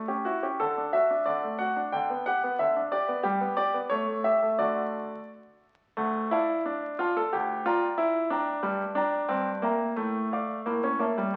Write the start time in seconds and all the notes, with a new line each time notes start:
0.08 C#4 G4
0.25 E4 F#4
0.43 C#4 G4
0.60 D3 A4
0.78 D4
0.93 F#4 E5
1.10 D4
1.26 D3 D5
1.44 A3
1.59 F#4 F#5
1.76 D4
1.92 D3 G5
2.10 B3
2.26 G4 F#5
2.44 B3
2.59 D3 E5
2.76 D4
2.92 G4 D5
3.08 B3
3.23 G3 G4
3.41 B3
3.57 G4 D5
3.74 B3
3.90 A3 C#5
4.07 A3
4.24 G4 E5
4.43 A3
4.59 D3 A3 F#4 D5
5.97 D2 A3
6.31 E4 D5 F5 A5
6.66 D4
6.99 F4 D5 F5 A5
7.17 A4
7.33 D2 G4
7.66 F4 D5 G5 A#5
7.98 E4
8.30 D4 D5 G5 A#5
8.63 G2 G3
8.95 D4 D5 G5 A#5
9.29 G2 C4
9.62 A#3 E5 G5 A#5
9.96 A2 A3
10.33 D5 F5 D6
10.66 A2 A#3
10.84 C#4
10.99 A#3 C#5 E5 A5
11.18 G3